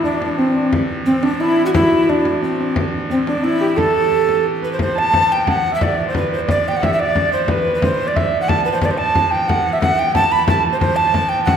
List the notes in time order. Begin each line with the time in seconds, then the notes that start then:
Already playing: A2 E3 C4 E4
0.04 D4, frame drum
0.20 D4, frame drum
0.38 C4, frame drum
0.55 D4, frame drum
0.73 A2 E3, frame drum
0.89 frame drum
1.06 C4
1.23 D4, frame drum
1.40 E4, frame drum
1.64 F#4 G4
1.74 E4, frame drum
1.91 E4, frame drum
2.08 D4
2.25 frame drum
2.42 C4, frame drum
2.60 D4
2.76 frame drum
2.94 frame drum
3.10 C4
3.26 D4, frame drum
3.43 E4, frame drum
3.60 G4
3.77 A4, frame drum
4.11 frame drum
4.29 frame drum
4.62 B4, frame drum
4.71 C5
4.79 A2 E3 C5, frame drum
4.95 A5
5.13 frame drum
5.29 G5, frame drum
5.47 F#5, frame drum
5.64 frame drum
5.71 E5
5.80 D5, frame drum
6.06 C5
6.14 B4, frame drum
6.31 C5, frame drum
6.47 D5, frame drum
6.66 G5, frame drum
6.73 F#5
6.82 E5, frame drum
6.94 E5
6.98 D5
7.16 frame drum
7.30 C5, frame drum
7.48 B4, frame drum
7.66 frame drum
7.73 B4
7.80 C5, frame drum
7.84 C5
8.00 frame drum
8.06 D5
8.15 E5, frame drum
8.34 frame drum
8.41 F#5
8.49 A5, frame drum
8.65 B4, frame drum
8.73 C5
8.81 A2 E3 C5, frame drum
8.86 D5
8.90 C5
8.98 A5
9.15 frame drum
9.31 G5, frame drum
9.48 F#5, frame drum
9.66 frame drum
9.73 E5
9.81 F#5, frame drum
9.97 G5
10.15 A5, frame drum
10.31 B5, frame drum
10.47 A5, frame drum
10.64 frame drum
10.72 C5
10.80 C5, frame drum
10.96 A5
11.14 A5, frame drum
11.29 G5, frame drum
11.45 F#5, frame drum